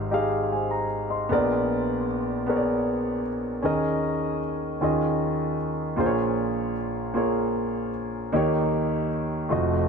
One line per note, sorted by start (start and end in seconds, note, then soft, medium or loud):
0.00 1.26 G#1 medium
0.00 1.26 G#2 medium
0.00 0.11 D#4 medium
0.00 0.12 G4 medium
0.00 0.13 G#4 medium
0.00 0.14 F5 medium
0.11 0.86 D#4 medium
0.11 0.86 G4 medium
0.11 0.87 G#4 medium
0.11 0.52 F5 medium
0.52 0.71 C5 soft
0.52 0.70 G#5 soft
0.71 1.08 A#5 medium
1.10 1.47 D#5 soft
1.10 1.47 C6 soft
1.29 3.61 A#1 medium
1.29 3.61 A#2 medium
1.29 2.04 B3 medium
1.29 2.05 G#4 medium
1.29 2.05 A#4 medium
1.29 2.05 D5 medium
2.46 3.21 B3 medium
2.46 3.22 G#4 medium
2.46 3.22 A#4 medium
2.46 2.55 C#5 medium
2.56 3.26 D5 medium
3.62 4.77 D#2 medium
3.62 4.77 D#3 medium
3.62 4.38 C#4 medium
3.62 4.38 G#4 medium
3.62 4.39 A#4 medium
3.62 4.39 D#5 medium
4.81 5.95 D#2 medium
4.81 5.95 D#3 medium
4.81 5.56 C#4 medium
4.81 5.56 F4 medium
4.81 5.56 G#4 medium
4.81 5.57 D#5 medium
5.96 8.29 A#1 medium
5.96 8.29 A#2 medium
5.96 6.72 A#3 medium
5.96 6.73 F4 medium
5.96 6.73 G#4 medium
5.96 6.06 C5 medium
6.06 6.77 C#5 medium
7.14 7.89 A#3 medium
7.14 7.90 F4 medium
7.14 7.90 G#4 medium
7.14 7.91 C#5 medium
8.33 9.47 D#2 medium
8.33 9.47 D#3 medium
8.33 9.07 A#3 medium
8.33 9.08 D#4 medium
8.33 9.08 G4 medium
8.33 9.09 C#5 medium
9.49 9.88 F1 medium
9.49 9.88 F2 medium
9.49 9.88 A3 medium
9.49 9.88 F4 medium
9.49 9.88 F#4 medium
9.49 9.88 D#5 medium